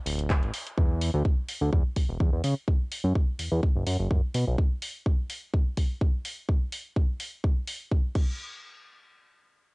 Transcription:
0.06 analog synth bass D1, open hi-hat, tambourine
0.18 closed hi-hat, tambourine
0.30 kick, clap, closed hi-hat
0.42 analog synth bass A1, closed hi-hat, tambourine
0.54 open hi-hat, tambourine
0.66 closed hi-hat, tambourine
0.78 analog synth bass E2, kick
1.01 open hi-hat
1.14 analog synth bass D2
1.25 kick
1.49 open hi-hat
1.61 analog synth bass D2
1.73 analog synth bass E2, kick
1.96 kick, open hi-hat
2.09 analog synth bass E1
2.20 analog synth bass E2, kick
2.33 analog synth bass E2
2.44 analog synth bass C#3, open hi-hat
2.68 kick
2.92 open hi-hat
3.04 analog synth bass F#2
3.15 kick
3.39 analog synth bass E2, open hi-hat
3.52 analog synth bass E2
3.63 kick
3.76 analog synth bass F#1
3.87 analog synth bass F#2, open hi-hat
3.99 analog synth bass F#1
4.11 analog synth bass F#2, kick
4.34 analog synth bass B2, open hi-hat
4.47 analog synth bass B1
4.58 kick
4.82 open hi-hat
5.06 kick
5.30 open hi-hat
5.54 kick
5.77 kick, open hi-hat
6.01 kick
6.25 open hi-hat
6.49 kick
6.72 open hi-hat
6.96 kick
7.20 open hi-hat
7.44 kick
7.67 open hi-hat
7.92 kick
8.15 kick, crash

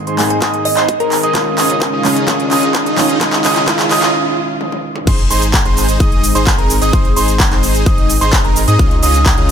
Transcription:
Already playing: grand piano G#2 D#3 G#3 C4 G#4, analog synth pad G#2 D#3 C4 G#4, riser
0.07 supersaw synth D#4 G#4 C5, grand piano C6, closed hi-hat
0.18 grand piano G#2 D#3 G#3 C4 G#4, kalimba G#5, clap, open hi-hat
0.30 kalimba G#5, closed hi-hat
0.42 supersaw synth D#4 G#4 D#5, grand piano D#6, kick, clap, closed hi-hat
0.54 closed hi-hat
0.65 kalimba D#5, open hi-hat
0.77 supersaw synth D#4 G#4 C5, kalimba D#5, grand piano C6, clap, closed hi-hat
0.88 kick, closed hi-hat
1.00 supersaw synth D#4 G#4 A#4, kalimba A#4, grand piano A#5, closed hi-hat
1.12 clap, open hi-hat
1.23 supersaw synth D#4 G#4 D#5, grand piano D#6, closed hi-hat
1.34 analog synth pad C#3 G#3 D#4 F4, grand piano D#3 G#3 C#4 F4, supersaw synth C#4 D#4 F4 G#4 D#5, kick, clap, closed hi-hat
1.58 supersaw synth C#4 D#4 F4 G#4 D#5, grand piano D#6, clap, open hi-hat
1.70 closed hi-hat
1.82 kick, clap, closed hi-hat
1.93 supersaw synth C#4 D#4 F4 G#4 D#5, grand piano D#6
2.04 grand piano D#3 G#3 C#4 F4, clap, open hi-hat
2.16 closed hi-hat
2.27 grand piano D#3 G#3 C#4 F4 D#6, supersaw synth C#4 D#4 F4 G#4 D#5, kick, clap, closed hi-hat
2.40 closed hi-hat
2.51 supersaw synth C#4 D#4 F4 G#4 D#5, grand piano D#6, clap, open hi-hat
2.63 closed hi-hat
2.75 kick, clap, closed hi-hat
2.86 supersaw synth C#4 D#4 F4 G#4 D#5, grand piano D#6, closed hi-hat
2.97 grand piano D#3 G#3 C#4 F4, clap, open hi-hat
3.10 closed hi-hat
3.20 grand piano D#3 G#3 C#4 F4 D#6, supersaw synth C#4 D#4 F4 G#4 D#5, kick, clap, closed hi-hat
3.33 clap
3.44 supersaw synth C#4 D#4 F4 G#4 D#5, grand piano D#6, clap, open hi-hat
3.56 clap, closed hi-hat
3.66 grand piano D#3 G#3 C#4 F4 D#6, supersaw synth C#4 D#4 F4 G#4 D#5, kick, clap, closed hi-hat
3.79 clap, closed hi-hat
3.91 supersaw synth C#4 D#4 F4 G#4 D#5, grand piano D#6, clap, open hi-hat
4.03 clap, closed hi-hat
4.61 high tom
4.72 high tom
4.96 mid tom
5.07 sub bass G#1, analog synth pad G#3 C4 D#4, supersaw synth D#4 G#4 C5, grand piano C6, kick, closed hi-hat, crash, shaker
5.19 closed hi-hat
5.30 sub bass G#1, supersaw synth D#4 G#4 C5, grand piano C6, open hi-hat, shaker
5.42 closed hi-hat, shaker
5.54 kick, clap, closed hi-hat, shaker
5.65 sub bass G#1, supersaw synth D#4 G#4 C5, grand piano C6, closed hi-hat
5.77 clap, open hi-hat, shaker
5.89 closed hi-hat, shaker
6.00 sub bass G#1, supersaw synth D#4 G#4 D#5, grand piano D#6, kick, closed hi-hat, shaker
6.12 closed hi-hat
6.24 open hi-hat, shaker
6.35 sub bass G#1, supersaw synth D#4 G#4 C5, grand piano C6, closed hi-hat, shaker
6.47 kick, clap, closed hi-hat, shaker
6.58 sub bass G#1, supersaw synth D#4 G#4 A#4, grand piano A#5, closed hi-hat
6.70 open hi-hat, shaker
6.82 sub bass G#1, supersaw synth D#4 G#4 D#5, grand piano D#6, closed hi-hat, shaker
6.93 sub bass G#1, supersaw synth D#4 G#4 C5, grand piano C6, kick, closed hi-hat, shaker
7.05 closed hi-hat
7.16 sub bass G#1, supersaw synth D#4 G#4 C5, grand piano C6, open hi-hat, shaker
7.28 closed hi-hat, shaker
7.40 kick, clap, closed hi-hat, shaker
7.51 sub bass G#1, supersaw synth D#4 G#4 C5, grand piano C6, clap, closed hi-hat
7.63 open hi-hat, shaker
7.75 closed hi-hat, shaker
7.86 sub bass G#1, supersaw synth D#4 G#4 D#5, grand piano D#6, kick, closed hi-hat, shaker
7.98 closed hi-hat
8.10 open hi-hat, shaker
8.21 sub bass G#1, supersaw synth D#4 G#4 C5, grand piano C6, closed hi-hat, shaker
8.33 kick, clap, closed hi-hat, shaker
8.45 sub bass G#1, supersaw synth D#4 G#4 A#4, grand piano A#5, closed hi-hat
8.56 open hi-hat, shaker
8.68 sub bass G#2, supersaw synth D#4 G#4 D#5, grand piano D#6, closed hi-hat, shaker
8.79 sub bass C#2, analog synth pad C#3 C#4 F4, supersaw synth C#4 D#4 F4 G#4 D#5, grand piano D#6, kick, closed hi-hat, shaker
8.91 closed hi-hat
9.03 sub bass C#2, supersaw synth C#4 D#4 F4 G#4 D#5, grand piano D#6, open hi-hat, shaker
9.14 closed hi-hat, shaker
9.26 kick, clap, closed hi-hat, shaker
9.37 sub bass C#2, supersaw synth C#4 D#4 F4 G#4 D#5, grand piano D#6, closed hi-hat

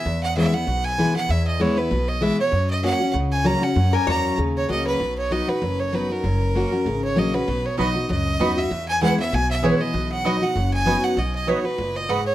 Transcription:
Already playing: fiddle E5
0.06 upright bass E2, steel-string acoustic guitar E2
0.23 fiddle F#5
0.36 steel-string acoustic guitar E3 G#3 B3 E4, fiddle E5
0.52 steel-string acoustic guitar B3 E4, fiddle F#5
0.67 upright bass B1, steel-string acoustic guitar B2
0.85 fiddle G#5
0.98 steel-string acoustic guitar E3 G#3 B3 E4
1.15 steel-string acoustic guitar B3 E4, fiddle F#5
1.29 steel-string acoustic guitar E2, upright bass E2, fiddle E5
1.47 fiddle D#5
1.59 steel-string acoustic guitar E3 G#3 B3 E4, fiddle C#5
1.77 steel-string acoustic guitar B3 E4, fiddle B4
1.91 upright bass B1, steel-string acoustic guitar B2
2.08 fiddle D#5
2.21 steel-string acoustic guitar E3 G#3 B3 E4, fiddle E5
2.38 steel-string acoustic guitar B3 E4, fiddle C#5
2.52 steel-string acoustic guitar F#2, upright bass F#2
2.70 fiddle D#5
2.83 steel-string acoustic guitar F#3 A#3 C#4 F#4, fiddle F#5
3.00 steel-string acoustic guitar C#4 F#4
3.13 upright bass C#2, steel-string acoustic guitar C#3
3.32 fiddle G#5
3.44 steel-string acoustic guitar F#3 A#3 C#4 F#4, fiddle A#5
3.62 steel-string acoustic guitar C#4 F#4, fiddle F#5
3.76 steel-string acoustic guitar F#2, upright bass F#2
3.93 resonator guitar played with a steel bar A#4, fiddle G#5
4.06 upright bass E2, steel-string acoustic guitar F#3 A#3 C#4 F#4, resonator guitar played with a steel bar C#5, fiddle A#5
4.38 upright bass D#2, steel-string acoustic guitar C#3
4.57 fiddle C#5
4.68 upright bass C#2, steel-string acoustic guitar F#3 A#3 C#4 F#4, fiddle D#5
4.87 fiddle B4
5.00 upright bass B1, steel-string acoustic guitar B2
5.18 fiddle C#5
5.31 steel-string acoustic guitar F#3 B3 D#4 F#4, fiddle D#5
5.48 steel-string acoustic guitar D#4 F#4, fiddle B4
5.62 upright bass F#1, steel-string acoustic guitar F#2
5.80 fiddle C#5
5.93 steel-string acoustic guitar F#3 B3 D#4 F#4, fiddle B4
6.09 steel-string acoustic guitar D#4 F#4, fiddle A#4
6.24 upright bass F#1, steel-string acoustic guitar F#2
6.55 steel-string acoustic guitar F#3 A#3 C#4 F#4
6.72 steel-string acoustic guitar C#4 F#4
6.86 upright bass G#1, steel-string acoustic guitar C#3
7.04 fiddle C#5
7.16 upright bass A#1, steel-string acoustic guitar F#3 A#3 C#4 F#4, fiddle D#5
7.33 steel-string acoustic guitar C#4 F#4, fiddle B4
7.48 upright bass B1, steel-string acoustic guitar B2
7.66 fiddle C#5
7.78 upright bass B1, steel-string acoustic guitar F#3 B3 D#4 F#4, mandolin B3 F#4 D#5 B5, fiddle D#5
7.95 steel-string acoustic guitar D#4 F#4
8.09 upright bass C#2, steel-string acoustic guitar F#2, fiddle D#5
8.40 upright bass D#2, steel-string acoustic guitar F#3 B3 D#4 F#4, mandolin B3 F#4 D#5 B5
8.56 steel-string acoustic guitar D#4 F#4, fiddle E5
8.71 steel-string acoustic guitar E2, upright bass E2
8.88 fiddle G#5
9.01 steel-string acoustic guitar E3 G#3 B3 E4, mandolin B3 E4 B4 G#5, fiddle F#5
9.18 steel-string acoustic guitar B3 E4, fiddle E5
9.32 upright bass B1, steel-string acoustic guitar B2, fiddle G#5
9.51 fiddle E5
9.62 steel-string acoustic guitar E3 G#3 B3 E4, mandolin B3 E4 B4 G#5, fiddle C#5
9.79 steel-string acoustic guitar B3 E4, fiddle D#5
9.94 upright bass B1, steel-string acoustic guitar B2
10.12 fiddle F#5
10.24 steel-string acoustic guitar F#3 B3 D#4 F#4, mandolin B3 F#4 D#5 B5, fiddle D#5
10.42 steel-string acoustic guitar D#4 F#4, fiddle F#5
10.56 upright bass F#1, steel-string acoustic guitar F#2
10.73 fiddle G#5
10.86 steel-string acoustic guitar F#3 B3 D#4 F#4, mandolin B3 F#4 D#5 B5
11.04 fiddle F#5
11.17 upright bass B1, steel-string acoustic guitar B2, fiddle D#5
11.35 fiddle D#5
11.47 steel-string acoustic guitar F#3 B3 D#4 F#4, mandolin B3 F#4 D#5 B5, fiddle C#5
11.64 steel-string acoustic guitar D#4 F#4, fiddle B4
11.78 upright bass F#1, steel-string acoustic guitar A#2
11.96 fiddle D#5
12.09 steel-string acoustic guitar G#2, mandolin B3 F#4 D#5 B5, fiddle F#5
12.26 fiddle C#5

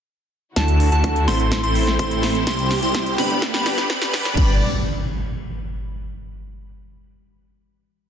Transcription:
0.56 detuned saw bass D2, string section D3 A3 E4 F#4, supersaw synth A3 D4 E4 F#4 A4, digital synth lead A5, kick, snare, closed hi-hat, riser
0.68 closed hi-hat
0.80 open hi-hat
0.92 detuned saw bass D2, supersaw synth A3 D4 E4 F#4 A4, digital synth lead A5, closed hi-hat
1.04 kick, closed hi-hat
1.16 closed hi-hat
1.28 detuned saw bass A1, supersaw synth A3 C4 E4 A4 C5, digital synth lead C6, snare, open hi-hat
1.40 closed hi-hat
1.52 string section A3 C4, kick, snare, closed hi-hat
1.63 detuned saw bass A1, supersaw synth A3 C4 E4 A4 C5, digital synth lead C6, closed hi-hat
1.75 open hi-hat
1.87 snare, closed hi-hat
1.99 detuned saw bass A1, supersaw synth A3 C4 E4 A4 C5, digital synth lead C6, kick, closed hi-hat
2.11 closed hi-hat
2.23 snare, open hi-hat
2.35 closed hi-hat
2.47 detuned saw bass C2, string section C3 C4 G4, supersaw synth G3 C4 E4 G4 C5, digital synth lead C6, kick, snare, closed hi-hat
2.59 closed hi-hat
2.71 snare, open hi-hat
2.82 detuned saw bass C2, supersaw synth G3 C4 E4 G4 C5, digital synth lead C6, closed hi-hat
2.95 kick, snare, closed hi-hat
3.06 closed hi-hat
3.18 detuned saw bass G1, supersaw synth G3 B3 D4 G4 B4, digital synth lead B5, snare, open hi-hat
3.30 closed hi-hat
3.42 string section B3 D4, kick, snare, closed hi-hat
3.54 detuned saw bass G1, supersaw synth G3 B3 D4 G4 B4, digital synth lead B5, snare, closed hi-hat
3.66 snare, open hi-hat
3.78 snare, closed hi-hat
3.90 detuned saw bass G1, supersaw synth G3 B3 D4 G4 B4, digital synth lead B5, kick, snare, closed hi-hat
4.02 snare, closed hi-hat
4.13 snare, open hi-hat
4.25 snare, closed hi-hat
4.37 detuned saw bass G1, string section G3 G4 B4 D5, supersaw synth G3 B3 D4 G4 B4, digital synth lead B5, kick, crash, impact

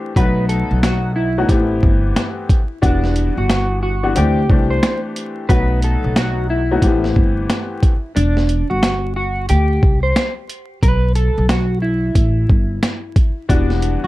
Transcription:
Already playing: upright piano E3 A3 C4 D4 G4
0.16 upright bass B1, upright piano F#3 A3 B3 D#4 F#4, clean electric guitar B4, kick, closed hi-hat
0.49 clean electric guitar A4, closed hi-hat
0.71 upright bass B1
0.83 clean electric guitar F#4, snare, closed hi-hat
1.16 clean electric guitar E4
1.38 upright piano F#3 A3 B3 D#4 F#4
1.49 upright bass A1, upright piano E3 A3 B3 C4 G4, kick, closed hi-hat
1.83 upright bass G1, kick
2.16 snare, closed hi-hat
2.49 kick, closed hi-hat
2.82 upright bass E1, upright piano E3 G3 B3 D4 F#4, clean electric guitar D4, kick, closed hi-hat
3.04 snare
3.16 closed hi-hat
3.37 upright bass G1, clean electric guitar F#4
3.50 snare, closed hi-hat
3.83 clean electric guitar F#4
4.03 upright piano E3 G3 B3 D4 F#4
4.15 upright bass D2, upright piano E3 A3 C4 D4 G4, clean electric guitar G4, closed hi-hat
4.50 upright bass C2, upright piano E3 A3 C4 D4 G4, kick
4.70 clean electric guitar C5
4.83 snare, closed hi-hat
5.16 closed hi-hat
5.49 upright bass B1, upright piano F#3 A3 B3 D#4 F#4, clean electric guitar B4, kick, closed hi-hat
5.82 clean electric guitar A4, closed hi-hat
6.04 upright bass B1
6.16 clean electric guitar F#4, snare, closed hi-hat
6.50 clean electric guitar E4
6.71 upright piano F#3 A3 B3 D#4 F#4
6.82 upright bass A1, upright piano E3 A3 B3 C4 G4, kick, closed hi-hat
7.04 snare
7.16 upright bass G1, kick
7.50 snare, closed hi-hat
7.83 kick, closed hi-hat
8.16 upright bass E1, clean electric guitar D4, closed hi-hat
8.37 snare
8.49 closed hi-hat
8.70 upright bass G1, clean electric guitar F#4
8.83 snare, closed hi-hat
9.16 clean electric guitar F#4
9.49 upright bass D2, clean electric guitar G4, closed hi-hat
9.83 upright bass C2, kick
10.03 clean electric guitar C5
10.16 snare, closed hi-hat
10.49 closed hi-hat
10.83 upright bass B1, clean electric guitar B4, kick, closed hi-hat
11.15 clean electric guitar A4, closed hi-hat
11.38 upright bass B1
11.49 clean electric guitar F#4, snare, closed hi-hat
11.82 clean electric guitar E4
12.15 upright bass A1, kick, closed hi-hat
12.50 upright bass G1, kick
12.83 snare, closed hi-hat
13.16 kick, closed hi-hat
13.49 upright bass E1, upright piano E3 G3 B3 D4 F#4, clean electric guitar D4, kick, closed hi-hat
13.70 snare
13.82 closed hi-hat
14.04 upright bass G1, clean electric guitar F#4

